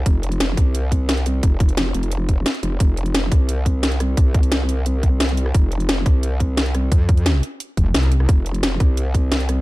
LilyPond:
<<
  \new Staff \with { instrumentName = "Wobble bass" } { \clef bass \time 4/4 \key c \phrygian \tempo 4 = 175 r1 | r1 | r1 | r1 |
r1 | f,4. r4 f,,8 c,4 | r1 | }
  \new Staff \with { instrumentName = "Wobble bass" } { \clef bass \time 4/4 \key c \phrygian f,,4. c,2~ c,8 | f,,4. f,,4. r8 f,,8 | f,,4. c,2~ c,8 | c,1 |
f,,4. c,2~ c,8 | r1 | f,,4. c,2~ c,8 | }
  \new DrumStaff \with { instrumentName = "Drums" } \drummode { \time 4/4 <hh bd>8 hh16 hh16 <hh sn>8 <hh bd>8 hh8 <hh bd>8 <hh sn>16 hh16 hh8 | <hh bd>8 <hh bd>16 hh16 <hh sn>8 hh16 hh16 hh8 <hh bd>8 <hh sn>16 hh16 hh8 | <hh bd>8 hh16 hh16 <hh sn>8 <hh bd ss>8 hh8 <hh bd>8 <hh sn>16 hh16 <hh ss>8 | <hh bd>8 <hh bd>16 hh16 <hh sn>8 hh8 hh8 <hh bd>8 <hh sn>16 hh16 hh16 ss16 |
<hh bd>8 hh16 hh16 <hh sn>8 <hh bd ss>8 hh8 <hh bd>8 <hh sn>16 hh16 <hh ss>8 | <hh bd>8 <hh bd>16 hh16 <hh sn>8 hh8 hh8 <hh bd>8 <hh sn>16 hh16 hh16 ss16 | <hh bd>8 hh16 hh16 <hh sn>8 <hh bd ss>8 hh8 <hh bd>8 <hh sn>16 hh16 <hh ss>8 | }
>>